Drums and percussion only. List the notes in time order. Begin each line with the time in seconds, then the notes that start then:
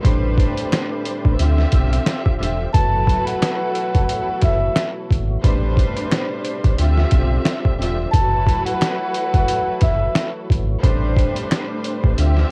0.05 kick, closed hi-hat
0.38 kick, closed hi-hat
0.57 closed hi-hat
0.72 finger snap, snare, closed hi-hat
1.05 closed hi-hat
1.25 kick
1.39 closed hi-hat
1.58 snare
1.72 kick, closed hi-hat
1.93 closed hi-hat
2.06 finger snap, snare, closed hi-hat
2.26 kick
2.43 closed hi-hat
2.74 kick, closed hi-hat
3.07 kick, closed hi-hat
3.27 closed hi-hat
3.42 finger snap, snare, closed hi-hat
3.75 closed hi-hat
3.95 kick, closed hi-hat
4.09 closed hi-hat
4.41 kick, snare, closed hi-hat
4.76 finger snap, snare, closed hi-hat
5.11 kick, closed hi-hat
5.44 kick, closed hi-hat
5.77 kick, closed hi-hat
5.97 closed hi-hat
6.11 finger snap, snare, closed hi-hat
6.45 closed hi-hat
6.64 kick, closed hi-hat
6.78 closed hi-hat
6.97 snare
7.11 kick, closed hi-hat
7.45 finger snap, snare, closed hi-hat
7.65 kick
7.82 closed hi-hat
8.14 kick, closed hi-hat
8.47 kick, closed hi-hat
8.66 closed hi-hat
8.81 finger snap, snare, closed hi-hat
9.14 closed hi-hat
9.34 kick, closed hi-hat
9.48 closed hi-hat
9.81 kick, snare, closed hi-hat
10.15 finger snap, snare, closed hi-hat
10.50 kick, closed hi-hat
10.83 kick, closed hi-hat
11.17 kick, closed hi-hat
11.36 closed hi-hat
11.51 finger snap, snare, closed hi-hat
11.84 closed hi-hat
12.04 kick
12.18 closed hi-hat
12.37 snare